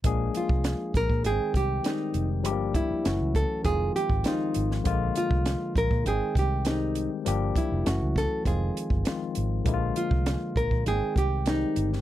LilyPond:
<<
  \new Staff \with { instrumentName = "Nylon-string guitar" } { \time 4/4 \key bes \mixolydian \tempo 4 = 100 r8 f'4 bes'8 aes'8 g'8 ees'8. r16 | r8 e'4 a'8 aes'8 g'8 ees'8. r16 | r8 f'4 bes'8 aes'8 g'8 ees'8. r16 | r8 e'4 a'8 aes'4 r4 |
r8 f'4 bes'8 aes'8 g'8 ees'8. r16 | }
  \new Staff \with { instrumentName = "Tine electric piano" } { \clef bass \time 4/4 \key bes \mixolydian <f aes bes d' aes'>4. r8 <ees aes bes c' g''>4 <ees g aes c' g'>4 | <f g aes bes d' g'>4 <fes ges a des' ges'>4 <ees f aes c' f'>4 <ees f aes c' f'>4 | <d f aes bes f'>4. r8 <ees aes c' g''>4 <ees g aes c' g'>4 | <f g bes d' g'>4 <fes ges a des' ges'>4 <ees f aes c' f'>4 <ees f aes c' f'>4 |
<d f aes bes e' f'>4. r8 <ees aes bes c' g''>4 <ees g aes c' g'>4 | }
  \new Staff \with { instrumentName = "Fingered electric bass" } { \clef bass \time 4/4 \key bes \mixolydian bes,,8 r16 c,8 r16 bes,,16 bes,16 aes,,16 r16 c,8 r8 f,,8 | g,,8. r16 ges,,16 des,8 r16 f,,8 r16 aes,,16 r8 aes,,8 | bes,,8 r16 c,8 r16 bes,,16 bes,16 aes,,16 r16 c,4~ c,16 r16 | g,,8 r16 f,,16 ges,,16 des,8 r16 f,,8 r16 g,,16 r8 aes,,8 |
bes,,8 r16 c,8 r16 bes,,16 bes,16 aes,,16 r16 c,4 g,,8 | }
  \new DrumStaff \with { instrumentName = "Drums" } \drummode { \time 4/4 <hh bd>8 hh16 bd16 <hh sn>8 <hh bd sn>16 bd16 hh8 <hh bd>8 <hh sn>8 hh8 | hh8 <hh bd>8 <hh sn>8 <hh bd>8 <hh bd>8 hh16 bd16 <hh sn>8 hh16 sn16 | <hh bd>8 hh16 bd16 <hh sn>8 <hh bd>16 bd16 hh8 <hh bd>8 <hh sn>8 hh8 | hh8 <hh bd>8 <hh sn>8 <hh bd sn>8 <hh bd>8 hh16 bd16 <hh sn>8 hh8 |
<hh bd>8 hh16 bd16 <hh sn>8 <hh bd>16 bd16 hh8 <hh bd>8 <hh sn>8 hh16 sn16 | }
>>